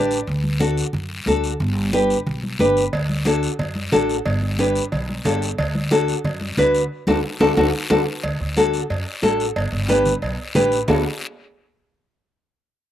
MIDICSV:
0, 0, Header, 1, 4, 480
1, 0, Start_track
1, 0, Key_signature, 2, "major"
1, 0, Tempo, 331492
1, 398, Time_signature, 4, 2, 24, 8
1, 18704, End_track
2, 0, Start_track
2, 0, Title_t, "Nylon-string guitar"
2, 0, Program_c, 0, 24
2, 0, Note_on_c, 0, 62, 83
2, 0, Note_on_c, 0, 67, 72
2, 0, Note_on_c, 0, 71, 87
2, 0, Note_on_c, 0, 74, 73
2, 252, Note_off_c, 0, 62, 0
2, 254, Note_off_c, 0, 67, 0
2, 259, Note_off_c, 0, 71, 0
2, 366, Note_off_c, 0, 74, 0
2, 864, Note_on_c, 0, 62, 82
2, 874, Note_on_c, 0, 66, 75
2, 874, Note_on_c, 0, 69, 91
2, 1208, Note_off_c, 0, 62, 0
2, 1211, Note_off_c, 0, 66, 0
2, 1213, Note_off_c, 0, 69, 0
2, 1839, Note_on_c, 0, 62, 79
2, 1845, Note_on_c, 0, 66, 74
2, 1852, Note_on_c, 0, 69, 89
2, 2176, Note_off_c, 0, 62, 0
2, 2178, Note_off_c, 0, 66, 0
2, 2182, Note_off_c, 0, 69, 0
2, 2795, Note_on_c, 0, 62, 81
2, 2803, Note_on_c, 0, 67, 76
2, 2812, Note_on_c, 0, 71, 85
2, 3134, Note_off_c, 0, 62, 0
2, 3140, Note_off_c, 0, 67, 0
2, 3141, Note_off_c, 0, 71, 0
2, 3756, Note_on_c, 0, 62, 78
2, 3764, Note_on_c, 0, 67, 75
2, 3769, Note_on_c, 0, 71, 86
2, 4096, Note_off_c, 0, 62, 0
2, 4098, Note_off_c, 0, 67, 0
2, 4102, Note_off_c, 0, 71, 0
2, 4713, Note_on_c, 0, 62, 82
2, 4723, Note_on_c, 0, 66, 71
2, 4731, Note_on_c, 0, 69, 90
2, 5054, Note_off_c, 0, 62, 0
2, 5060, Note_off_c, 0, 66, 0
2, 5062, Note_off_c, 0, 69, 0
2, 5674, Note_on_c, 0, 62, 82
2, 5679, Note_on_c, 0, 66, 73
2, 5683, Note_on_c, 0, 69, 95
2, 6016, Note_off_c, 0, 62, 0
2, 6016, Note_off_c, 0, 66, 0
2, 6019, Note_off_c, 0, 69, 0
2, 6642, Note_on_c, 0, 62, 78
2, 6648, Note_on_c, 0, 67, 73
2, 6658, Note_on_c, 0, 71, 90
2, 6979, Note_off_c, 0, 62, 0
2, 6983, Note_off_c, 0, 67, 0
2, 6985, Note_off_c, 0, 71, 0
2, 7601, Note_on_c, 0, 62, 82
2, 7609, Note_on_c, 0, 67, 73
2, 7611, Note_on_c, 0, 69, 87
2, 7940, Note_off_c, 0, 62, 0
2, 7941, Note_off_c, 0, 67, 0
2, 7943, Note_off_c, 0, 69, 0
2, 8556, Note_on_c, 0, 62, 79
2, 8562, Note_on_c, 0, 66, 75
2, 8571, Note_on_c, 0, 69, 84
2, 8896, Note_off_c, 0, 62, 0
2, 8900, Note_off_c, 0, 66, 0
2, 8902, Note_off_c, 0, 69, 0
2, 9520, Note_on_c, 0, 62, 85
2, 9530, Note_on_c, 0, 66, 78
2, 9535, Note_on_c, 0, 71, 89
2, 9859, Note_off_c, 0, 62, 0
2, 9861, Note_off_c, 0, 66, 0
2, 9866, Note_off_c, 0, 71, 0
2, 10242, Note_on_c, 0, 62, 91
2, 10247, Note_on_c, 0, 69, 97
2, 10249, Note_on_c, 0, 66, 95
2, 10397, Note_off_c, 0, 62, 0
2, 10397, Note_off_c, 0, 69, 0
2, 10400, Note_off_c, 0, 66, 0
2, 10722, Note_on_c, 0, 62, 90
2, 10723, Note_on_c, 0, 66, 88
2, 10727, Note_on_c, 0, 69, 95
2, 10876, Note_off_c, 0, 66, 0
2, 10877, Note_off_c, 0, 62, 0
2, 10877, Note_off_c, 0, 69, 0
2, 10958, Note_on_c, 0, 62, 88
2, 10962, Note_on_c, 0, 66, 93
2, 10965, Note_on_c, 0, 69, 87
2, 11114, Note_off_c, 0, 62, 0
2, 11116, Note_off_c, 0, 66, 0
2, 11116, Note_off_c, 0, 69, 0
2, 11439, Note_on_c, 0, 62, 90
2, 11442, Note_on_c, 0, 66, 88
2, 11447, Note_on_c, 0, 69, 96
2, 11596, Note_off_c, 0, 62, 0
2, 11596, Note_off_c, 0, 66, 0
2, 11596, Note_off_c, 0, 69, 0
2, 12401, Note_on_c, 0, 62, 81
2, 12410, Note_on_c, 0, 66, 73
2, 12415, Note_on_c, 0, 69, 92
2, 12738, Note_off_c, 0, 62, 0
2, 12741, Note_off_c, 0, 66, 0
2, 12745, Note_off_c, 0, 69, 0
2, 13353, Note_on_c, 0, 62, 77
2, 13357, Note_on_c, 0, 66, 72
2, 13366, Note_on_c, 0, 69, 97
2, 13693, Note_off_c, 0, 62, 0
2, 13696, Note_off_c, 0, 66, 0
2, 13699, Note_off_c, 0, 69, 0
2, 14311, Note_on_c, 0, 62, 84
2, 14316, Note_on_c, 0, 67, 76
2, 14329, Note_on_c, 0, 71, 91
2, 14652, Note_off_c, 0, 62, 0
2, 14656, Note_off_c, 0, 67, 0
2, 14659, Note_off_c, 0, 71, 0
2, 15271, Note_on_c, 0, 62, 85
2, 15276, Note_on_c, 0, 67, 78
2, 15285, Note_on_c, 0, 71, 95
2, 15611, Note_off_c, 0, 62, 0
2, 15615, Note_off_c, 0, 67, 0
2, 15617, Note_off_c, 0, 71, 0
2, 15749, Note_on_c, 0, 62, 82
2, 15755, Note_on_c, 0, 66, 72
2, 15756, Note_on_c, 0, 69, 87
2, 15978, Note_off_c, 0, 62, 0
2, 15978, Note_off_c, 0, 69, 0
2, 15979, Note_off_c, 0, 66, 0
2, 18704, End_track
3, 0, Start_track
3, 0, Title_t, "Upright bass"
3, 0, Program_c, 1, 32
3, 0, Note_on_c, 1, 33, 90
3, 300, Note_off_c, 1, 33, 0
3, 398, Note_on_c, 1, 38, 100
3, 1167, Note_off_c, 1, 38, 0
3, 1356, Note_on_c, 1, 42, 89
3, 1742, Note_off_c, 1, 42, 0
3, 1835, Note_on_c, 1, 38, 87
3, 2222, Note_off_c, 1, 38, 0
3, 2319, Note_on_c, 1, 31, 104
3, 3089, Note_off_c, 1, 31, 0
3, 3281, Note_on_c, 1, 35, 89
3, 3666, Note_off_c, 1, 35, 0
3, 3760, Note_on_c, 1, 31, 88
3, 4145, Note_off_c, 1, 31, 0
3, 4241, Note_on_c, 1, 38, 98
3, 5010, Note_off_c, 1, 38, 0
3, 5198, Note_on_c, 1, 42, 98
3, 5585, Note_off_c, 1, 42, 0
3, 5683, Note_on_c, 1, 33, 88
3, 6068, Note_off_c, 1, 33, 0
3, 6165, Note_on_c, 1, 31, 99
3, 6932, Note_off_c, 1, 31, 0
3, 7125, Note_on_c, 1, 35, 91
3, 7509, Note_off_c, 1, 35, 0
3, 7597, Note_on_c, 1, 31, 92
3, 7984, Note_off_c, 1, 31, 0
3, 8084, Note_on_c, 1, 38, 106
3, 8852, Note_off_c, 1, 38, 0
3, 9046, Note_on_c, 1, 42, 95
3, 9429, Note_off_c, 1, 42, 0
3, 9521, Note_on_c, 1, 38, 92
3, 9906, Note_off_c, 1, 38, 0
3, 10243, Note_on_c, 1, 38, 93
3, 10422, Note_off_c, 1, 38, 0
3, 10722, Note_on_c, 1, 38, 99
3, 10901, Note_off_c, 1, 38, 0
3, 10962, Note_on_c, 1, 38, 101
3, 11141, Note_off_c, 1, 38, 0
3, 11439, Note_on_c, 1, 38, 93
3, 11619, Note_off_c, 1, 38, 0
3, 11924, Note_on_c, 1, 38, 90
3, 12116, Note_off_c, 1, 38, 0
3, 12169, Note_on_c, 1, 38, 87
3, 12742, Note_off_c, 1, 38, 0
3, 12885, Note_on_c, 1, 42, 97
3, 13076, Note_off_c, 1, 42, 0
3, 13364, Note_on_c, 1, 33, 91
3, 13747, Note_off_c, 1, 33, 0
3, 13842, Note_on_c, 1, 31, 97
3, 14034, Note_off_c, 1, 31, 0
3, 14081, Note_on_c, 1, 31, 86
3, 14656, Note_off_c, 1, 31, 0
3, 14799, Note_on_c, 1, 35, 92
3, 14991, Note_off_c, 1, 35, 0
3, 15276, Note_on_c, 1, 33, 96
3, 15662, Note_off_c, 1, 33, 0
3, 15751, Note_on_c, 1, 38, 93
3, 15978, Note_off_c, 1, 38, 0
3, 18704, End_track
4, 0, Start_track
4, 0, Title_t, "Drums"
4, 157, Note_on_c, 9, 73, 73
4, 302, Note_off_c, 9, 73, 0
4, 390, Note_on_c, 9, 63, 34
4, 398, Note_on_c, 9, 74, 74
4, 535, Note_off_c, 9, 63, 0
4, 542, Note_off_c, 9, 74, 0
4, 634, Note_on_c, 9, 63, 71
4, 779, Note_off_c, 9, 63, 0
4, 874, Note_on_c, 9, 63, 86
4, 881, Note_on_c, 9, 73, 67
4, 1018, Note_off_c, 9, 63, 0
4, 1026, Note_off_c, 9, 73, 0
4, 1123, Note_on_c, 9, 73, 75
4, 1268, Note_off_c, 9, 73, 0
4, 1349, Note_on_c, 9, 63, 34
4, 1349, Note_on_c, 9, 64, 83
4, 1365, Note_on_c, 9, 74, 72
4, 1493, Note_off_c, 9, 63, 0
4, 1493, Note_off_c, 9, 64, 0
4, 1510, Note_off_c, 9, 74, 0
4, 1825, Note_on_c, 9, 63, 81
4, 1845, Note_on_c, 9, 73, 70
4, 1970, Note_off_c, 9, 63, 0
4, 1989, Note_off_c, 9, 73, 0
4, 2080, Note_on_c, 9, 73, 72
4, 2225, Note_off_c, 9, 73, 0
4, 2317, Note_on_c, 9, 63, 34
4, 2317, Note_on_c, 9, 64, 72
4, 2323, Note_on_c, 9, 74, 70
4, 2462, Note_off_c, 9, 63, 0
4, 2462, Note_off_c, 9, 64, 0
4, 2468, Note_off_c, 9, 74, 0
4, 2796, Note_on_c, 9, 63, 96
4, 2801, Note_on_c, 9, 73, 66
4, 2941, Note_off_c, 9, 63, 0
4, 2946, Note_off_c, 9, 73, 0
4, 3044, Note_on_c, 9, 73, 72
4, 3189, Note_off_c, 9, 73, 0
4, 3279, Note_on_c, 9, 63, 34
4, 3279, Note_on_c, 9, 64, 81
4, 3289, Note_on_c, 9, 74, 71
4, 3424, Note_off_c, 9, 63, 0
4, 3424, Note_off_c, 9, 64, 0
4, 3434, Note_off_c, 9, 74, 0
4, 3524, Note_on_c, 9, 63, 65
4, 3669, Note_off_c, 9, 63, 0
4, 3754, Note_on_c, 9, 63, 82
4, 3754, Note_on_c, 9, 64, 70
4, 3769, Note_on_c, 9, 73, 69
4, 3898, Note_off_c, 9, 63, 0
4, 3898, Note_off_c, 9, 64, 0
4, 3914, Note_off_c, 9, 73, 0
4, 4009, Note_on_c, 9, 73, 74
4, 4154, Note_off_c, 9, 73, 0
4, 4242, Note_on_c, 9, 56, 103
4, 4243, Note_on_c, 9, 63, 34
4, 4243, Note_on_c, 9, 64, 70
4, 4245, Note_on_c, 9, 74, 71
4, 4387, Note_off_c, 9, 56, 0
4, 4387, Note_off_c, 9, 63, 0
4, 4387, Note_off_c, 9, 64, 0
4, 4390, Note_off_c, 9, 74, 0
4, 4479, Note_on_c, 9, 63, 69
4, 4624, Note_off_c, 9, 63, 0
4, 4709, Note_on_c, 9, 63, 91
4, 4724, Note_on_c, 9, 56, 68
4, 4724, Note_on_c, 9, 73, 69
4, 4854, Note_off_c, 9, 63, 0
4, 4868, Note_off_c, 9, 73, 0
4, 4869, Note_off_c, 9, 56, 0
4, 4965, Note_on_c, 9, 73, 72
4, 5110, Note_off_c, 9, 73, 0
4, 5201, Note_on_c, 9, 63, 36
4, 5201, Note_on_c, 9, 64, 85
4, 5203, Note_on_c, 9, 56, 79
4, 5203, Note_on_c, 9, 74, 68
4, 5346, Note_off_c, 9, 63, 0
4, 5346, Note_off_c, 9, 64, 0
4, 5347, Note_off_c, 9, 56, 0
4, 5348, Note_off_c, 9, 74, 0
4, 5437, Note_on_c, 9, 63, 69
4, 5582, Note_off_c, 9, 63, 0
4, 5683, Note_on_c, 9, 56, 70
4, 5683, Note_on_c, 9, 63, 77
4, 5683, Note_on_c, 9, 64, 67
4, 5686, Note_on_c, 9, 73, 69
4, 5827, Note_off_c, 9, 56, 0
4, 5827, Note_off_c, 9, 63, 0
4, 5827, Note_off_c, 9, 64, 0
4, 5831, Note_off_c, 9, 73, 0
4, 5929, Note_on_c, 9, 73, 75
4, 6074, Note_off_c, 9, 73, 0
4, 6161, Note_on_c, 9, 63, 35
4, 6161, Note_on_c, 9, 64, 71
4, 6162, Note_on_c, 9, 56, 105
4, 6167, Note_on_c, 9, 74, 72
4, 6305, Note_off_c, 9, 63, 0
4, 6305, Note_off_c, 9, 64, 0
4, 6307, Note_off_c, 9, 56, 0
4, 6312, Note_off_c, 9, 74, 0
4, 6397, Note_on_c, 9, 63, 69
4, 6542, Note_off_c, 9, 63, 0
4, 6642, Note_on_c, 9, 63, 88
4, 6646, Note_on_c, 9, 56, 66
4, 6650, Note_on_c, 9, 73, 69
4, 6787, Note_off_c, 9, 63, 0
4, 6791, Note_off_c, 9, 56, 0
4, 6795, Note_off_c, 9, 73, 0
4, 6886, Note_on_c, 9, 73, 73
4, 7031, Note_off_c, 9, 73, 0
4, 7126, Note_on_c, 9, 56, 82
4, 7128, Note_on_c, 9, 74, 76
4, 7130, Note_on_c, 9, 63, 35
4, 7130, Note_on_c, 9, 64, 81
4, 7270, Note_off_c, 9, 56, 0
4, 7273, Note_off_c, 9, 74, 0
4, 7275, Note_off_c, 9, 63, 0
4, 7275, Note_off_c, 9, 64, 0
4, 7374, Note_on_c, 9, 63, 65
4, 7519, Note_off_c, 9, 63, 0
4, 7605, Note_on_c, 9, 56, 71
4, 7605, Note_on_c, 9, 66, 75
4, 7607, Note_on_c, 9, 73, 72
4, 7609, Note_on_c, 9, 63, 87
4, 7609, Note_on_c, 9, 64, 69
4, 7750, Note_off_c, 9, 56, 0
4, 7750, Note_off_c, 9, 66, 0
4, 7751, Note_off_c, 9, 73, 0
4, 7754, Note_off_c, 9, 63, 0
4, 7754, Note_off_c, 9, 64, 0
4, 7851, Note_on_c, 9, 73, 72
4, 7996, Note_off_c, 9, 73, 0
4, 8086, Note_on_c, 9, 74, 75
4, 8088, Note_on_c, 9, 56, 104
4, 8091, Note_on_c, 9, 63, 34
4, 8091, Note_on_c, 9, 64, 72
4, 8231, Note_off_c, 9, 74, 0
4, 8232, Note_off_c, 9, 56, 0
4, 8236, Note_off_c, 9, 63, 0
4, 8236, Note_off_c, 9, 64, 0
4, 8324, Note_on_c, 9, 63, 75
4, 8469, Note_off_c, 9, 63, 0
4, 8559, Note_on_c, 9, 63, 95
4, 8565, Note_on_c, 9, 73, 73
4, 8569, Note_on_c, 9, 56, 68
4, 8704, Note_off_c, 9, 63, 0
4, 8709, Note_off_c, 9, 73, 0
4, 8714, Note_off_c, 9, 56, 0
4, 8809, Note_on_c, 9, 73, 69
4, 8954, Note_off_c, 9, 73, 0
4, 9042, Note_on_c, 9, 63, 34
4, 9042, Note_on_c, 9, 64, 83
4, 9050, Note_on_c, 9, 56, 86
4, 9053, Note_on_c, 9, 74, 72
4, 9187, Note_off_c, 9, 63, 0
4, 9187, Note_off_c, 9, 64, 0
4, 9195, Note_off_c, 9, 56, 0
4, 9198, Note_off_c, 9, 74, 0
4, 9283, Note_on_c, 9, 63, 63
4, 9427, Note_off_c, 9, 63, 0
4, 9519, Note_on_c, 9, 63, 82
4, 9519, Note_on_c, 9, 64, 69
4, 9522, Note_on_c, 9, 73, 67
4, 9532, Note_on_c, 9, 56, 67
4, 9664, Note_off_c, 9, 63, 0
4, 9664, Note_off_c, 9, 64, 0
4, 9667, Note_off_c, 9, 73, 0
4, 9676, Note_off_c, 9, 56, 0
4, 9767, Note_on_c, 9, 73, 72
4, 9911, Note_off_c, 9, 73, 0
4, 10236, Note_on_c, 9, 63, 97
4, 10243, Note_on_c, 9, 74, 91
4, 10249, Note_on_c, 9, 65, 102
4, 10381, Note_off_c, 9, 63, 0
4, 10388, Note_off_c, 9, 74, 0
4, 10394, Note_off_c, 9, 65, 0
4, 10720, Note_on_c, 9, 74, 98
4, 10721, Note_on_c, 9, 63, 98
4, 10726, Note_on_c, 9, 65, 101
4, 10864, Note_off_c, 9, 74, 0
4, 10865, Note_off_c, 9, 63, 0
4, 10870, Note_off_c, 9, 65, 0
4, 10962, Note_on_c, 9, 63, 95
4, 10966, Note_on_c, 9, 74, 102
4, 10968, Note_on_c, 9, 65, 97
4, 11107, Note_off_c, 9, 63, 0
4, 11111, Note_off_c, 9, 74, 0
4, 11113, Note_off_c, 9, 65, 0
4, 11439, Note_on_c, 9, 65, 101
4, 11442, Note_on_c, 9, 74, 98
4, 11450, Note_on_c, 9, 63, 94
4, 11584, Note_off_c, 9, 65, 0
4, 11587, Note_off_c, 9, 74, 0
4, 11594, Note_off_c, 9, 63, 0
4, 11925, Note_on_c, 9, 56, 99
4, 11927, Note_on_c, 9, 74, 74
4, 11933, Note_on_c, 9, 63, 35
4, 12070, Note_off_c, 9, 56, 0
4, 12072, Note_off_c, 9, 74, 0
4, 12078, Note_off_c, 9, 63, 0
4, 12405, Note_on_c, 9, 73, 69
4, 12407, Note_on_c, 9, 56, 67
4, 12415, Note_on_c, 9, 63, 80
4, 12550, Note_off_c, 9, 73, 0
4, 12552, Note_off_c, 9, 56, 0
4, 12560, Note_off_c, 9, 63, 0
4, 12648, Note_on_c, 9, 73, 69
4, 12793, Note_off_c, 9, 73, 0
4, 12890, Note_on_c, 9, 63, 34
4, 12892, Note_on_c, 9, 74, 72
4, 12893, Note_on_c, 9, 56, 88
4, 13035, Note_off_c, 9, 63, 0
4, 13036, Note_off_c, 9, 74, 0
4, 13037, Note_off_c, 9, 56, 0
4, 13367, Note_on_c, 9, 63, 84
4, 13371, Note_on_c, 9, 56, 71
4, 13374, Note_on_c, 9, 73, 69
4, 13512, Note_off_c, 9, 63, 0
4, 13516, Note_off_c, 9, 56, 0
4, 13518, Note_off_c, 9, 73, 0
4, 13613, Note_on_c, 9, 73, 70
4, 13758, Note_off_c, 9, 73, 0
4, 13845, Note_on_c, 9, 56, 109
4, 13847, Note_on_c, 9, 74, 72
4, 13851, Note_on_c, 9, 63, 35
4, 13990, Note_off_c, 9, 56, 0
4, 13992, Note_off_c, 9, 74, 0
4, 13996, Note_off_c, 9, 63, 0
4, 14321, Note_on_c, 9, 73, 72
4, 14325, Note_on_c, 9, 63, 84
4, 14326, Note_on_c, 9, 56, 68
4, 14466, Note_off_c, 9, 73, 0
4, 14470, Note_off_c, 9, 63, 0
4, 14471, Note_off_c, 9, 56, 0
4, 14559, Note_on_c, 9, 73, 74
4, 14560, Note_on_c, 9, 64, 74
4, 14704, Note_off_c, 9, 73, 0
4, 14705, Note_off_c, 9, 64, 0
4, 14801, Note_on_c, 9, 74, 70
4, 14806, Note_on_c, 9, 56, 87
4, 14807, Note_on_c, 9, 63, 37
4, 14946, Note_off_c, 9, 74, 0
4, 14951, Note_off_c, 9, 56, 0
4, 14952, Note_off_c, 9, 63, 0
4, 15279, Note_on_c, 9, 63, 89
4, 15279, Note_on_c, 9, 64, 87
4, 15280, Note_on_c, 9, 56, 74
4, 15281, Note_on_c, 9, 73, 72
4, 15424, Note_off_c, 9, 63, 0
4, 15424, Note_off_c, 9, 64, 0
4, 15425, Note_off_c, 9, 56, 0
4, 15425, Note_off_c, 9, 73, 0
4, 15521, Note_on_c, 9, 73, 74
4, 15666, Note_off_c, 9, 73, 0
4, 15754, Note_on_c, 9, 64, 101
4, 15754, Note_on_c, 9, 66, 102
4, 15755, Note_on_c, 9, 74, 102
4, 15899, Note_off_c, 9, 64, 0
4, 15899, Note_off_c, 9, 66, 0
4, 15899, Note_off_c, 9, 74, 0
4, 18704, End_track
0, 0, End_of_file